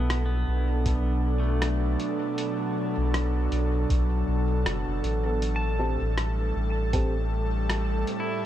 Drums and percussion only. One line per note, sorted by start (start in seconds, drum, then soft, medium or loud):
0.10 cross-stick medium
0.10 closed hi-hat soft
0.86 kick loud
0.86 closed hi-hat medium
1.62 cross-stick medium
1.62 closed hi-hat medium
2.00 closed hi-hat soft
2.38 closed hi-hat soft
3.14 cross-stick medium
3.14 closed hi-hat soft
3.52 closed hi-hat soft
3.90 kick loud
3.90 closed hi-hat soft
4.66 cross-stick medium
4.66 closed hi-hat soft
5.04 closed hi-hat soft
5.42 closed hi-hat soft
6.18 cross-stick medium
6.18 closed hi-hat soft
6.93 kick loud
6.93 closed hi-hat soft
7.70 cross-stick medium
7.70 closed hi-hat soft
8.07 closed hi-hat soft